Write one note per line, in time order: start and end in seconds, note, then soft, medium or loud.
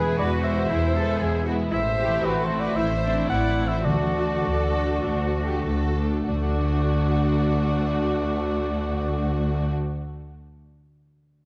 0.00 0.13 E2 medium
0.00 1.73 B2 soft
0.00 1.73 E3 medium
0.00 0.43 G#3 soft
0.00 0.34 G#3 soft
0.00 0.43 B3 soft
0.00 0.43 E4 soft
0.00 0.18 G#4 medium
0.00 0.18 B4 medium
0.17 0.64 E2 medium
0.17 0.70 F#4 medium
0.17 0.43 B4 medium
0.17 0.30 D5 medium
0.35 0.68 G#3 soft
0.44 0.94 G#3 medium
0.44 0.94 B3 soft
0.44 0.94 E4 soft
0.44 1.44 C5 medium
0.44 1.44 E5 medium
0.53 1.54 E4 soft
0.69 1.15 E2 medium
0.69 1.02 G#3 soft
0.69 0.94 E4 medium
0.95 1.45 G#3 medium
0.95 1.45 B3 medium
0.95 1.46 E4 medium
0.95 1.21 A4 medium
1.03 1.36 G#3 soft
1.20 1.66 E2 medium
1.20 1.74 B3 soft
1.20 1.46 G#4 medium
1.37 1.74 G#3 soft
1.45 1.72 G#3 medium
1.45 1.72 B3 medium
1.45 1.71 E4 soft
1.45 1.53 F#4 medium
1.55 3.89 E4 soft
1.71 2.17 A1 medium
1.71 3.89 A2 medium
1.71 1.79 E4 medium
1.71 2.20 C5 medium
1.71 2.26 E5 medium
1.89 2.23 A3 soft
1.98 2.48 A3 medium
1.98 2.48 C4 medium
1.98 2.49 E4 soft
1.98 2.23 G4 medium
2.07 2.40 E3 soft
2.23 2.70 A1 medium
2.23 2.94 A3 soft
2.23 2.76 F#4 medium
2.23 2.41 G4 medium
2.23 2.46 B4 medium
2.40 2.76 E3 soft
2.40 2.58 A4 soft
2.44 2.61 C5 medium
2.49 3.02 A3 soft
2.49 3.02 C4 soft
2.49 3.02 E4 medium
2.59 3.66 C4 soft
2.59 2.76 B4 medium
2.59 2.78 D5 medium
2.76 3.24 A1 medium
2.76 3.12 E3 soft
2.76 2.85 E4 medium
2.76 3.30 C5 medium
2.76 3.29 E5 medium
2.96 3.30 A3 soft
3.03 3.57 A3 soft
3.03 3.57 C4 soft
3.03 3.30 D4 soft
3.03 3.58 E4 soft
3.13 3.48 E3 soft
3.30 3.79 A1 soft
3.30 4.23 A3 soft
3.30 3.85 E4 soft
3.30 3.66 D5 medium
3.30 3.69 F#5 medium
3.49 3.89 E3 soft
3.58 3.85 A3 soft
3.58 3.86 C4 soft
3.58 3.86 E4 soft
3.67 3.89 C4 soft
3.67 3.87 C5 medium
3.67 3.87 E5 medium
3.85 4.37 D2 soft
3.85 6.28 D3 soft
3.85 4.70 D3 medium
3.85 4.14 A3 soft
3.85 4.14 D4 soft
3.85 5.93 F#4 medium
3.85 4.14 F#4 soft
3.85 5.62 A4 soft
3.85 5.65 D5 medium
4.05 4.42 D4 soft
4.15 4.73 A3 soft
4.15 4.73 D4 soft
4.15 4.38 F#4 soft
4.25 4.63 A3 soft
4.44 4.97 D2 soft
4.44 5.23 D4 soft
4.44 5.00 A4 medium
4.64 5.02 A3 soft
4.74 5.33 A3 soft
4.74 5.33 D4 soft
4.84 6.07 F#4 soft
5.04 5.58 D2 medium
5.04 5.44 A3 soft
5.04 5.24 D4 medium
5.24 5.65 D4 soft
5.24 5.45 F#4 soft
5.34 5.95 A3 soft
5.34 5.95 D4 soft
5.45 5.86 A3 soft
5.45 5.66 G4 soft
5.66 6.22 D2 soft
5.66 6.42 D4 soft
5.66 6.28 A4 soft
5.87 6.34 A3 soft
5.96 6.28 A3 soft
5.96 6.28 D4 soft
6.08 6.49 F#4 soft
6.29 9.70 D2 medium
6.29 9.70 D2 soft
6.29 10.19 D3 soft
6.29 9.71 D3 soft
6.29 9.70 A3 soft
6.29 9.70 D4 soft
6.29 9.70 F#4 soft
6.29 9.71 F#4 soft
6.29 9.70 D5 medium
6.36 9.77 A3 soft
6.43 9.84 D4 soft
6.50 9.91 F#4 soft
6.57 9.98 D5 soft